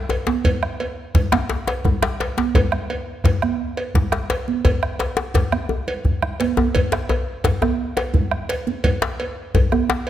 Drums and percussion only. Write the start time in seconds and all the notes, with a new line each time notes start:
0.09 cowbell, djembe slap, djembe tone
0.27 djembe slap, high conga, djembe tone
0.44 bombo low, cowbell, high conga, low conga, djembe bass
0.63 bombo rim, djembe slap, high conga
0.80 bombo rim, cowbell, high conga
1.15 bombo rim, bombo low, cowbell, djembe slap, djembe bass, low conga
1.32 bombo rim, djembe slap, high conga, djembe tone
1.49 djembe slap
1.67 bombo rim, cowbell, djembe slap
1.85 bombo low, djembe tone, low conga, djembe bass
2.02 bombo rim, djembe slap
2.20 cowbell, djembe slap
2.37 djembe slap, djembe tone, high conga
2.55 bombo low, cowbell, high conga, djembe tone, low conga, djembe bass
2.72 bombo rim, djembe slap, high conga
2.90 bombo rim, cowbell, high conga
3.24 bombo rim, bombo low, cowbell, djembe slap, low conga, djembe bass
3.42 bombo rim, djembe tone, high conga
3.77 bombo rim, cowbell
3.95 bombo low, djembe slap, low conga, djembe bass
4.12 bombo rim, djembe slap
4.30 cowbell, djembe slap
4.48 djembe tone, high conga
4.65 bombo low, cowbell, djembe tone, high conga, low conga, djembe bass
4.83 bombo rim
4.99 cowbell, djembe slap
5.17 djembe slap, high conga
5.34 bombo low, cowbell, djembe slap, low conga, djembe bass
5.52 bombo rim, djembe slap, djembe tone, high conga
5.69 djembe slap, djembe tone, high conga
5.87 cowbell, djembe slap, low conga
6.04 bombo low, djembe slap, low conga, djembe bass
6.22 bombo rim, low conga
6.40 bombo rim, cowbell, djembe slap, high conga
6.57 bombo rim, djembe tone, high conga
6.75 bombo low, cowbell, high conga, djembe bass, low conga
6.92 bombo rim, djembe slap, high conga
7.09 bombo rim, cowbell, djembe tone, high conga
7.44 bombo rim, bombo low, cowbell, djembe slap, low conga, djembe bass
7.62 bombo rim, djembe tone, high conga
7.97 bombo rim, cowbell, djembe slap
8.14 bombo low, low conga, djembe bass
8.31 bombo rim
8.49 cowbell, djembe slap
8.67 high conga, djembe tone
8.84 bombo low, cowbell, high conga, low conga, djembe bass
9.02 bombo rim, djembe slap, high conga
9.20 cowbell, high conga
9.54 bombo rim, bombo low, cowbell, djembe slap, djembe bass, low conga
9.72 bombo rim, djembe tone, high conga
9.90 djembe slap
10.07 cowbell